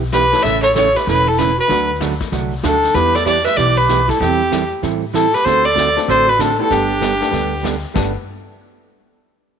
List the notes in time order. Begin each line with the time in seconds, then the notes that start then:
Already playing: B1
0.12 E3 B3 E4 G4 B4, kick, snare, hi-hat pedal
0.32 E3 A3 C#4 E4 A4, snare
0.42 A1 C#3 E3 A3 C#4 A4 E5, brush sweep, kick, snare
0.62 A4 C#5
0.74 C#3 E3 A3 C#4 A4 C#5, kick, snare, hi-hat pedal
0.94 G4 B4, snare
1.07 E1 C#3 E3 A3 C#4 E4 A4 B4, brush sweep, kick, snare
1.27 E4 A4
1.38 C#3 E3 A3 C#4 E4 A4 B4, kick, snare, hi-hat pedal
1.57 F#4 B4
1.67 D2 D3 F#3 A3 D4 F#4 A4, brush sweep, kick, snare
2.00 D3 F#3 A3 D4 F#4, kick, snare, hi-hat pedal
2.20 kick, snare
2.32 C2 D3 F#3 A3 D4 F#4, brush sweep, kick, snare
2.63 D2 D3 F#3 A3 D4 F#4 A4, kick, snare, hi-hat pedal
2.83 snare
2.94 E2 E3 G3 B3 E4 G4 B4, brush sweep, kick, snare
3.15 A4 D5, snare
3.25 E3 B3 E4 G4 D5, kick, snare, hi-hat pedal
3.44 B4 E5, snare
3.57 B1 E3 B3 E4 G4 D5, brush sweep, kick, snare
3.76 G4 B4
3.88 E3 B3 E4 G4, kick, snare, hi-hat pedal
4.08 E4 A4, kick, snare
4.19 E2 E3 G3 C4 E4 G4 A4, brush sweep, kick, snare
4.51 E3 G3 C4 E4 A4, kick, snare, hi-hat pedal
4.82 A2 E3 G3 C4 E4 A4, brush sweep, kick, snare
5.13 E3 G3 C4 E4 A4, kick, snare, hi-hat pedal
5.33 G4 B4, snare
5.45 D2 D3 A3 C4 F#4 A4 C5, brush sweep, kick, snare
5.64 A4 D5
5.75 D3 A3 C4 F#4 A4, kick, snare, hi-hat pedal
5.96 A3 C4 D4 F#4 A4, snare
6.08 A1 D3 A3 C4 F#4 A4 C5, brush sweep, kick, snare
6.27 F#4 B4
6.38 D3 A3 C4 D4 F#4 A4, kick, snare, hi-hat pedal
6.58 A3 B3 D4 E4 G4 A4
6.70 G1 G3 B3 D4 G4 A4, brush sweep, kick, snare
7.01 G3 B3 D4 A4, kick, snare, hi-hat pedal
7.20 A3 B3 D4 G4 A4, snare
7.31 D2 G3 B3 D4 A4, brush sweep, kick, snare
7.63 G3 B3 D4 A4, kick, snare, hi-hat pedal
7.94 G1 G3 A3 B3 D4 G4 A4, kick, snare, crash